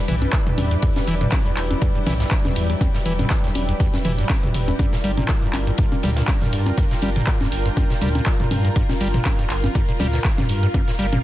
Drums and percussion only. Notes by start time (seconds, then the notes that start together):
0.08 mid tom, open hi-hat, ride, tambourine
0.22 closed hi-hat, tambourine, high conga
0.33 kick, snare, clap, closed hi-hat, ride, tambourine
0.46 closed hi-hat, mid tom, tambourine
0.56 mid tom, open hi-hat, ride, tambourine, high conga
0.71 closed hi-hat, tambourine
0.82 kick, closed hi-hat, ride, tambourine
0.96 snare, closed hi-hat, tambourine, high conga
1.07 open hi-hat, ride, tambourine
1.21 closed hi-hat, mid tom, tambourine
1.32 kick, snare, clap, closed hi-hat, ride, tambourine, high conga
1.46 closed hi-hat, tambourine
1.57 clap, open hi-hat, ride, tambourine
1.71 closed hi-hat, tambourine, high conga
1.81 kick, closed hi-hat, ride, tambourine
1.95 closed hi-hat, tambourine
2.06 snare, mid tom, open hi-hat, ride, tambourine, high conga
2.20 snare, closed hi-hat, tambourine
2.31 kick, snare, clap, closed hi-hat, ride, tambourine
2.45 snare, closed hi-hat, mid tom, tambourine, high conga
2.55 open hi-hat, ride, tambourine
2.69 closed hi-hat, tambourine
2.81 kick, closed hi-hat, ride, tambourine, high conga
2.94 snare, closed hi-hat, tambourine
3.06 open hi-hat, ride, tambourine
3.19 closed hi-hat, mid tom, ride, tambourine, high conga
3.30 kick, snare, clap, closed hi-hat, ride, tambourine
3.44 snare, closed hi-hat, tambourine
3.55 open hi-hat, ride, tambourine, high conga
3.68 closed hi-hat, tambourine
3.80 kick, closed hi-hat, ride, tambourine
3.93 snare, closed hi-hat, tambourine, high conga
4.05 mid tom, open hi-hat, ride, tambourine
4.18 closed hi-hat, tambourine
4.29 kick, snare, clap, closed hi-hat, ride, tambourine, high conga
4.43 closed hi-hat, mid tom, tambourine
4.54 mid tom, open hi-hat, ride, tambourine
4.68 closed hi-hat, tambourine, high conga
4.79 kick, closed hi-hat, ride, tambourine, high conga
4.93 snare, closed hi-hat, tambourine
5.04 open hi-hat, ride, tambourine
5.17 closed hi-hat, mid tom, tambourine, high conga
5.29 kick, snare, clap, closed hi-hat, ride, tambourine
5.42 closed hi-hat, tambourine
5.53 clap, open hi-hat, ride, tambourine, high conga
5.67 closed hi-hat
5.78 kick, closed hi-hat, ride, tambourine
5.92 closed hi-hat, tambourine, high conga
6.03 snare, mid tom, open hi-hat, ride, tambourine
6.16 snare, closed hi-hat, tambourine
6.28 kick, snare, clap, closed hi-hat, ride, tambourine, high conga
6.42 snare, closed hi-hat, mid tom, tambourine
6.53 open hi-hat, ride, tambourine
6.66 closed hi-hat, tambourine, high conga
6.78 kick, closed hi-hat, ride, tambourine
6.91 snare, closed hi-hat, tambourine
7.02 open hi-hat, ride, tambourine, high conga
7.16 closed hi-hat, mid tom, ride, tambourine
7.27 kick, snare, clap, closed hi-hat, ride, tambourine
7.40 snare, closed hi-hat, tambourine, high conga
7.52 open hi-hat, ride, tambourine
7.65 closed hi-hat, tambourine
7.76 kick, closed hi-hat, ride, tambourine, high conga
7.90 snare, closed hi-hat, tambourine
8.01 mid tom, open hi-hat, ride, tambourine
8.15 closed hi-hat, tambourine, high conga
8.26 kick, snare, clap, closed hi-hat, ride, tambourine
8.40 closed hi-hat, mid tom, tambourine
8.51 mid tom, open hi-hat, ride, tambourine, high conga
8.65 closed hi-hat, tambourine
8.76 kick, closed hi-hat, ride, tambourine
8.89 snare, closed hi-hat, tambourine, high conga
9.01 open hi-hat, ride, tambourine
9.14 closed hi-hat, mid tom, tambourine
9.25 kick, snare, clap, closed hi-hat, ride, tambourine, high conga
9.39 closed hi-hat, tambourine
9.50 clap, open hi-hat, ride, tambourine
9.64 closed hi-hat, tambourine, high conga
9.75 kick, closed hi-hat, ride, tambourine
9.89 closed hi-hat, tambourine
9.99 snare, mid tom, open hi-hat, ride, tambourine, high conga
10.13 snare, closed hi-hat, tambourine
10.25 kick, snare, clap, closed hi-hat, ride, tambourine
10.38 snare, closed hi-hat, mid tom, tambourine, high conga
10.49 open hi-hat, ride, tambourine
10.63 closed hi-hat, tambourine
10.74 kick, closed hi-hat, ride, tambourine, high conga
10.88 snare, closed hi-hat, tambourine
10.99 open hi-hat, ride, tambourine
11.12 closed hi-hat, mid tom, ride, tambourine, high conga